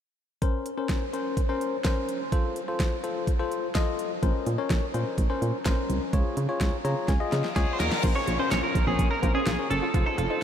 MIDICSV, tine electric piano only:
0, 0, Header, 1, 2, 480
1, 0, Start_track
1, 0, Key_signature, -5, "minor"
1, 0, Tempo, 476190
1, 422, Time_signature, 4, 2, 24, 8
1, 10515, End_track
2, 0, Start_track
2, 0, Title_t, "Tine electric piano"
2, 0, Program_c, 0, 4
2, 422, Note_on_c, 0, 70, 71
2, 422, Note_on_c, 0, 72, 82
2, 423, Note_on_c, 0, 61, 77
2, 691, Note_off_c, 0, 61, 0
2, 691, Note_off_c, 0, 70, 0
2, 691, Note_off_c, 0, 72, 0
2, 782, Note_on_c, 0, 70, 72
2, 783, Note_on_c, 0, 61, 77
2, 783, Note_on_c, 0, 72, 83
2, 1051, Note_off_c, 0, 61, 0
2, 1051, Note_off_c, 0, 70, 0
2, 1051, Note_off_c, 0, 72, 0
2, 1142, Note_on_c, 0, 72, 86
2, 1143, Note_on_c, 0, 61, 75
2, 1143, Note_on_c, 0, 70, 68
2, 1411, Note_off_c, 0, 61, 0
2, 1411, Note_off_c, 0, 70, 0
2, 1411, Note_off_c, 0, 72, 0
2, 1503, Note_on_c, 0, 61, 81
2, 1503, Note_on_c, 0, 70, 72
2, 1503, Note_on_c, 0, 72, 88
2, 1771, Note_off_c, 0, 70, 0
2, 1771, Note_off_c, 0, 72, 0
2, 1772, Note_off_c, 0, 61, 0
2, 1861, Note_on_c, 0, 61, 79
2, 1861, Note_on_c, 0, 70, 74
2, 1861, Note_on_c, 0, 72, 86
2, 2220, Note_off_c, 0, 61, 0
2, 2220, Note_off_c, 0, 70, 0
2, 2220, Note_off_c, 0, 72, 0
2, 2341, Note_on_c, 0, 72, 86
2, 2342, Note_on_c, 0, 65, 75
2, 2342, Note_on_c, 0, 69, 71
2, 2611, Note_off_c, 0, 65, 0
2, 2611, Note_off_c, 0, 69, 0
2, 2611, Note_off_c, 0, 72, 0
2, 2703, Note_on_c, 0, 65, 79
2, 2703, Note_on_c, 0, 69, 70
2, 2703, Note_on_c, 0, 72, 87
2, 2971, Note_off_c, 0, 65, 0
2, 2971, Note_off_c, 0, 69, 0
2, 2971, Note_off_c, 0, 72, 0
2, 3060, Note_on_c, 0, 69, 69
2, 3061, Note_on_c, 0, 65, 75
2, 3061, Note_on_c, 0, 72, 83
2, 3330, Note_off_c, 0, 65, 0
2, 3330, Note_off_c, 0, 69, 0
2, 3330, Note_off_c, 0, 72, 0
2, 3420, Note_on_c, 0, 65, 81
2, 3421, Note_on_c, 0, 69, 76
2, 3421, Note_on_c, 0, 72, 89
2, 3690, Note_off_c, 0, 65, 0
2, 3690, Note_off_c, 0, 69, 0
2, 3690, Note_off_c, 0, 72, 0
2, 3778, Note_on_c, 0, 69, 76
2, 3779, Note_on_c, 0, 65, 80
2, 3779, Note_on_c, 0, 75, 89
2, 4139, Note_off_c, 0, 65, 0
2, 4139, Note_off_c, 0, 69, 0
2, 4139, Note_off_c, 0, 75, 0
2, 4260, Note_on_c, 0, 61, 79
2, 4260, Note_on_c, 0, 72, 88
2, 4261, Note_on_c, 0, 70, 74
2, 4530, Note_off_c, 0, 61, 0
2, 4530, Note_off_c, 0, 70, 0
2, 4530, Note_off_c, 0, 72, 0
2, 4620, Note_on_c, 0, 61, 77
2, 4620, Note_on_c, 0, 70, 75
2, 4620, Note_on_c, 0, 73, 86
2, 4890, Note_off_c, 0, 61, 0
2, 4890, Note_off_c, 0, 70, 0
2, 4890, Note_off_c, 0, 73, 0
2, 4980, Note_on_c, 0, 70, 70
2, 4981, Note_on_c, 0, 61, 77
2, 4981, Note_on_c, 0, 72, 84
2, 5250, Note_off_c, 0, 61, 0
2, 5250, Note_off_c, 0, 70, 0
2, 5250, Note_off_c, 0, 72, 0
2, 5339, Note_on_c, 0, 61, 85
2, 5340, Note_on_c, 0, 70, 75
2, 5340, Note_on_c, 0, 72, 92
2, 5609, Note_off_c, 0, 61, 0
2, 5610, Note_off_c, 0, 70, 0
2, 5610, Note_off_c, 0, 72, 0
2, 5701, Note_on_c, 0, 61, 79
2, 5701, Note_on_c, 0, 70, 74
2, 5701, Note_on_c, 0, 72, 87
2, 6060, Note_off_c, 0, 61, 0
2, 6060, Note_off_c, 0, 70, 0
2, 6060, Note_off_c, 0, 72, 0
2, 6180, Note_on_c, 0, 65, 77
2, 6180, Note_on_c, 0, 73, 84
2, 6181, Note_on_c, 0, 68, 75
2, 6450, Note_off_c, 0, 65, 0
2, 6450, Note_off_c, 0, 68, 0
2, 6450, Note_off_c, 0, 73, 0
2, 6539, Note_on_c, 0, 65, 81
2, 6539, Note_on_c, 0, 68, 70
2, 6540, Note_on_c, 0, 73, 89
2, 6809, Note_off_c, 0, 68, 0
2, 6810, Note_off_c, 0, 65, 0
2, 6810, Note_off_c, 0, 73, 0
2, 6901, Note_on_c, 0, 73, 84
2, 6902, Note_on_c, 0, 68, 70
2, 6902, Note_on_c, 0, 82, 68
2, 6903, Note_on_c, 0, 65, 76
2, 7125, Note_off_c, 0, 82, 0
2, 7141, Note_on_c, 0, 80, 70
2, 7171, Note_off_c, 0, 65, 0
2, 7171, Note_off_c, 0, 68, 0
2, 7171, Note_off_c, 0, 73, 0
2, 7260, Note_on_c, 0, 65, 81
2, 7261, Note_on_c, 0, 68, 76
2, 7261, Note_on_c, 0, 75, 92
2, 7365, Note_off_c, 0, 80, 0
2, 7381, Note_on_c, 0, 77, 68
2, 7530, Note_off_c, 0, 65, 0
2, 7530, Note_off_c, 0, 68, 0
2, 7530, Note_off_c, 0, 75, 0
2, 7605, Note_off_c, 0, 77, 0
2, 7619, Note_on_c, 0, 65, 83
2, 7619, Note_on_c, 0, 68, 77
2, 7619, Note_on_c, 0, 73, 90
2, 7619, Note_on_c, 0, 75, 70
2, 7979, Note_off_c, 0, 65, 0
2, 7979, Note_off_c, 0, 68, 0
2, 7979, Note_off_c, 0, 73, 0
2, 8067, Note_off_c, 0, 75, 0
2, 8100, Note_on_c, 0, 61, 68
2, 8100, Note_on_c, 0, 70, 67
2, 8100, Note_on_c, 0, 72, 79
2, 8370, Note_off_c, 0, 61, 0
2, 8370, Note_off_c, 0, 70, 0
2, 8370, Note_off_c, 0, 72, 0
2, 8460, Note_on_c, 0, 70, 65
2, 8460, Note_on_c, 0, 72, 78
2, 8461, Note_on_c, 0, 61, 70
2, 8819, Note_off_c, 0, 70, 0
2, 8819, Note_off_c, 0, 72, 0
2, 8820, Note_off_c, 0, 61, 0
2, 8942, Note_on_c, 0, 70, 67
2, 8943, Note_on_c, 0, 61, 73
2, 8943, Note_on_c, 0, 73, 80
2, 9211, Note_off_c, 0, 61, 0
2, 9211, Note_off_c, 0, 70, 0
2, 9212, Note_off_c, 0, 73, 0
2, 9302, Note_on_c, 0, 72, 78
2, 9303, Note_on_c, 0, 61, 72
2, 9303, Note_on_c, 0, 70, 67
2, 9571, Note_off_c, 0, 61, 0
2, 9571, Note_off_c, 0, 70, 0
2, 9571, Note_off_c, 0, 72, 0
2, 9663, Note_on_c, 0, 70, 66
2, 9663, Note_on_c, 0, 73, 80
2, 9664, Note_on_c, 0, 61, 75
2, 9931, Note_off_c, 0, 70, 0
2, 9932, Note_off_c, 0, 61, 0
2, 9932, Note_off_c, 0, 73, 0
2, 10024, Note_on_c, 0, 65, 71
2, 10024, Note_on_c, 0, 69, 63
2, 10024, Note_on_c, 0, 72, 79
2, 10292, Note_off_c, 0, 65, 0
2, 10292, Note_off_c, 0, 69, 0
2, 10292, Note_off_c, 0, 72, 0
2, 10384, Note_on_c, 0, 69, 67
2, 10385, Note_on_c, 0, 65, 72
2, 10385, Note_on_c, 0, 72, 78
2, 10515, Note_off_c, 0, 65, 0
2, 10515, Note_off_c, 0, 69, 0
2, 10515, Note_off_c, 0, 72, 0
2, 10515, End_track
0, 0, End_of_file